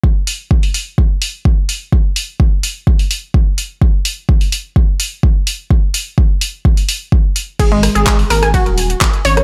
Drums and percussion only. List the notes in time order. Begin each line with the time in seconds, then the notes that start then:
0.04 kick
0.27 open hi-hat
0.51 kick
0.63 open hi-hat
0.74 open hi-hat
0.98 kick
1.22 open hi-hat
1.45 kick
1.69 open hi-hat
1.92 kick
2.16 open hi-hat
2.40 kick
2.63 open hi-hat
2.87 kick
2.99 open hi-hat
3.11 open hi-hat
3.34 kick
3.58 open hi-hat
3.82 kick
4.05 open hi-hat
4.29 kick
4.41 open hi-hat
4.52 open hi-hat
4.76 kick
5.00 open hi-hat
5.23 kick
5.47 open hi-hat
5.71 kick
5.94 open hi-hat
6.18 kick
6.41 open hi-hat
6.65 kick
6.77 open hi-hat
6.89 open hi-hat
7.12 kick
7.36 open hi-hat
7.59 kick, closed hi-hat, crash, ride
7.72 ride
7.83 cross-stick, open hi-hat, ride
7.95 closed hi-hat
8.06 kick, snare, clap, closed hi-hat, ride
8.19 open hi-hat
8.30 snare, open hi-hat, ride
8.43 cross-stick, snare, closed hi-hat
8.54 kick, closed hi-hat, ride
8.66 closed hi-hat
8.78 open hi-hat, ride
8.90 closed hi-hat
9.01 kick, snare, clap, closed hi-hat, ride
9.14 closed hi-hat
9.25 open hi-hat, ride
9.37 cross-stick, closed hi-hat